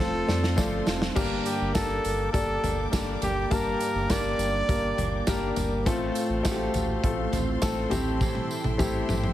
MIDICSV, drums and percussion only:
0, 0, Header, 1, 2, 480
1, 0, Start_track
1, 0, Tempo, 587142
1, 949, Time_signature, 4, 2, 24, 8
1, 7629, End_track
2, 0, Start_track
2, 0, Title_t, "Drums"
2, 0, Note_on_c, 9, 38, 67
2, 79, Note_off_c, 9, 38, 0
2, 233, Note_on_c, 9, 38, 80
2, 241, Note_on_c, 9, 54, 34
2, 315, Note_off_c, 9, 38, 0
2, 322, Note_off_c, 9, 54, 0
2, 355, Note_on_c, 9, 38, 73
2, 437, Note_off_c, 9, 38, 0
2, 471, Note_on_c, 9, 54, 84
2, 472, Note_on_c, 9, 36, 120
2, 473, Note_on_c, 9, 38, 80
2, 553, Note_off_c, 9, 54, 0
2, 554, Note_off_c, 9, 36, 0
2, 555, Note_off_c, 9, 38, 0
2, 707, Note_on_c, 9, 54, 52
2, 711, Note_on_c, 9, 38, 97
2, 789, Note_off_c, 9, 54, 0
2, 793, Note_off_c, 9, 38, 0
2, 832, Note_on_c, 9, 38, 106
2, 914, Note_off_c, 9, 38, 0
2, 950, Note_on_c, 9, 49, 99
2, 952, Note_on_c, 9, 36, 123
2, 952, Note_on_c, 9, 54, 50
2, 1032, Note_off_c, 9, 49, 0
2, 1033, Note_off_c, 9, 36, 0
2, 1034, Note_off_c, 9, 54, 0
2, 1188, Note_on_c, 9, 54, 52
2, 1192, Note_on_c, 9, 42, 69
2, 1270, Note_off_c, 9, 54, 0
2, 1274, Note_off_c, 9, 42, 0
2, 1429, Note_on_c, 9, 54, 68
2, 1430, Note_on_c, 9, 42, 95
2, 1433, Note_on_c, 9, 36, 121
2, 1433, Note_on_c, 9, 38, 106
2, 1511, Note_off_c, 9, 54, 0
2, 1512, Note_off_c, 9, 42, 0
2, 1515, Note_off_c, 9, 36, 0
2, 1515, Note_off_c, 9, 38, 0
2, 1673, Note_on_c, 9, 42, 64
2, 1674, Note_on_c, 9, 54, 54
2, 1755, Note_off_c, 9, 42, 0
2, 1755, Note_off_c, 9, 54, 0
2, 1913, Note_on_c, 9, 36, 112
2, 1914, Note_on_c, 9, 42, 83
2, 1916, Note_on_c, 9, 54, 33
2, 1994, Note_off_c, 9, 36, 0
2, 1996, Note_off_c, 9, 42, 0
2, 1998, Note_off_c, 9, 54, 0
2, 2156, Note_on_c, 9, 43, 70
2, 2158, Note_on_c, 9, 42, 71
2, 2163, Note_on_c, 9, 54, 33
2, 2237, Note_off_c, 9, 43, 0
2, 2240, Note_off_c, 9, 42, 0
2, 2244, Note_off_c, 9, 54, 0
2, 2395, Note_on_c, 9, 36, 101
2, 2395, Note_on_c, 9, 42, 99
2, 2395, Note_on_c, 9, 54, 80
2, 2396, Note_on_c, 9, 38, 101
2, 2476, Note_off_c, 9, 42, 0
2, 2477, Note_off_c, 9, 36, 0
2, 2477, Note_off_c, 9, 54, 0
2, 2478, Note_off_c, 9, 38, 0
2, 2632, Note_on_c, 9, 42, 75
2, 2636, Note_on_c, 9, 43, 51
2, 2636, Note_on_c, 9, 54, 52
2, 2713, Note_off_c, 9, 42, 0
2, 2717, Note_off_c, 9, 43, 0
2, 2718, Note_off_c, 9, 54, 0
2, 2872, Note_on_c, 9, 42, 85
2, 2873, Note_on_c, 9, 36, 126
2, 2879, Note_on_c, 9, 54, 50
2, 2953, Note_off_c, 9, 42, 0
2, 2955, Note_off_c, 9, 36, 0
2, 2961, Note_off_c, 9, 54, 0
2, 3111, Note_on_c, 9, 42, 69
2, 3123, Note_on_c, 9, 54, 52
2, 3192, Note_off_c, 9, 42, 0
2, 3205, Note_off_c, 9, 54, 0
2, 3349, Note_on_c, 9, 42, 100
2, 3352, Note_on_c, 9, 38, 127
2, 3354, Note_on_c, 9, 36, 116
2, 3358, Note_on_c, 9, 54, 63
2, 3431, Note_off_c, 9, 42, 0
2, 3434, Note_off_c, 9, 38, 0
2, 3435, Note_off_c, 9, 36, 0
2, 3440, Note_off_c, 9, 54, 0
2, 3590, Note_on_c, 9, 42, 59
2, 3600, Note_on_c, 9, 54, 52
2, 3672, Note_off_c, 9, 42, 0
2, 3682, Note_off_c, 9, 54, 0
2, 3833, Note_on_c, 9, 36, 121
2, 3833, Note_on_c, 9, 42, 85
2, 3835, Note_on_c, 9, 54, 35
2, 3915, Note_off_c, 9, 36, 0
2, 3915, Note_off_c, 9, 42, 0
2, 3917, Note_off_c, 9, 54, 0
2, 4074, Note_on_c, 9, 43, 65
2, 4076, Note_on_c, 9, 42, 64
2, 4155, Note_off_c, 9, 43, 0
2, 4157, Note_off_c, 9, 42, 0
2, 4308, Note_on_c, 9, 42, 102
2, 4310, Note_on_c, 9, 38, 97
2, 4313, Note_on_c, 9, 36, 107
2, 4315, Note_on_c, 9, 54, 75
2, 4390, Note_off_c, 9, 42, 0
2, 4392, Note_off_c, 9, 38, 0
2, 4395, Note_off_c, 9, 36, 0
2, 4397, Note_off_c, 9, 54, 0
2, 4548, Note_on_c, 9, 42, 72
2, 4552, Note_on_c, 9, 43, 62
2, 4552, Note_on_c, 9, 54, 49
2, 4630, Note_off_c, 9, 42, 0
2, 4634, Note_off_c, 9, 43, 0
2, 4634, Note_off_c, 9, 54, 0
2, 4792, Note_on_c, 9, 54, 49
2, 4794, Note_on_c, 9, 36, 127
2, 4795, Note_on_c, 9, 42, 99
2, 4874, Note_off_c, 9, 54, 0
2, 4875, Note_off_c, 9, 36, 0
2, 4877, Note_off_c, 9, 42, 0
2, 5030, Note_on_c, 9, 42, 68
2, 5034, Note_on_c, 9, 54, 54
2, 5112, Note_off_c, 9, 42, 0
2, 5116, Note_off_c, 9, 54, 0
2, 5271, Note_on_c, 9, 42, 100
2, 5274, Note_on_c, 9, 38, 111
2, 5275, Note_on_c, 9, 36, 123
2, 5279, Note_on_c, 9, 54, 81
2, 5353, Note_off_c, 9, 42, 0
2, 5356, Note_off_c, 9, 38, 0
2, 5357, Note_off_c, 9, 36, 0
2, 5361, Note_off_c, 9, 54, 0
2, 5509, Note_on_c, 9, 42, 59
2, 5514, Note_on_c, 9, 43, 66
2, 5519, Note_on_c, 9, 54, 51
2, 5591, Note_off_c, 9, 42, 0
2, 5596, Note_off_c, 9, 43, 0
2, 5601, Note_off_c, 9, 54, 0
2, 5752, Note_on_c, 9, 36, 109
2, 5753, Note_on_c, 9, 42, 81
2, 5834, Note_off_c, 9, 36, 0
2, 5835, Note_off_c, 9, 42, 0
2, 5991, Note_on_c, 9, 43, 67
2, 5993, Note_on_c, 9, 42, 71
2, 6003, Note_on_c, 9, 54, 31
2, 6073, Note_off_c, 9, 43, 0
2, 6075, Note_off_c, 9, 42, 0
2, 6085, Note_off_c, 9, 54, 0
2, 6227, Note_on_c, 9, 42, 94
2, 6229, Note_on_c, 9, 38, 95
2, 6232, Note_on_c, 9, 36, 109
2, 6233, Note_on_c, 9, 54, 83
2, 6309, Note_off_c, 9, 42, 0
2, 6311, Note_off_c, 9, 38, 0
2, 6314, Note_off_c, 9, 36, 0
2, 6315, Note_off_c, 9, 54, 0
2, 6468, Note_on_c, 9, 42, 71
2, 6472, Note_on_c, 9, 43, 61
2, 6479, Note_on_c, 9, 54, 54
2, 6550, Note_off_c, 9, 42, 0
2, 6554, Note_off_c, 9, 43, 0
2, 6561, Note_off_c, 9, 54, 0
2, 6711, Note_on_c, 9, 36, 114
2, 6712, Note_on_c, 9, 48, 57
2, 6713, Note_on_c, 9, 54, 49
2, 6792, Note_off_c, 9, 36, 0
2, 6793, Note_off_c, 9, 48, 0
2, 6795, Note_off_c, 9, 54, 0
2, 6827, Note_on_c, 9, 48, 50
2, 6908, Note_off_c, 9, 48, 0
2, 6954, Note_on_c, 9, 54, 50
2, 7036, Note_off_c, 9, 54, 0
2, 7066, Note_on_c, 9, 48, 61
2, 7148, Note_off_c, 9, 48, 0
2, 7187, Note_on_c, 9, 47, 76
2, 7190, Note_on_c, 9, 36, 116
2, 7196, Note_on_c, 9, 54, 66
2, 7269, Note_off_c, 9, 47, 0
2, 7272, Note_off_c, 9, 36, 0
2, 7278, Note_off_c, 9, 54, 0
2, 7430, Note_on_c, 9, 47, 78
2, 7437, Note_on_c, 9, 54, 50
2, 7512, Note_off_c, 9, 47, 0
2, 7518, Note_off_c, 9, 54, 0
2, 7550, Note_on_c, 9, 47, 61
2, 7629, Note_off_c, 9, 47, 0
2, 7629, End_track
0, 0, End_of_file